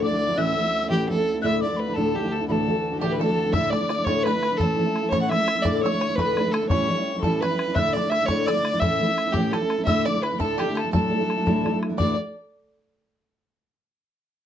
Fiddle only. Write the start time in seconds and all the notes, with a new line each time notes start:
0.04 D5
0.38 E5
0.91 G4
1.09 A4
1.43 E5
1.62 D5
1.79 B4
1.96 A4
2.15 G4
2.32 A4
2.49 A4
3.00 G4
3.12 B4
3.20 A4
3.52 E5
3.70 D5
4.04 C#5
4.23 B4
4.57 A4
5.10 C#5
5.22 F#5
5.29 E5
5.62 D5
5.75 D5
5.81 C#5
6.16 B4
6.52 A4
6.69 C#5
7.21 A4
7.41 B4
7.75 E5
7.93 D5
8.10 E5
8.26 C#5
8.46 D5
8.80 E5
9.33 G4
9.52 A4
9.85 E5
10.06 D5
10.22 B4
10.40 A4
10.59 G4
10.77 A4
10.93 A4
11.98 D5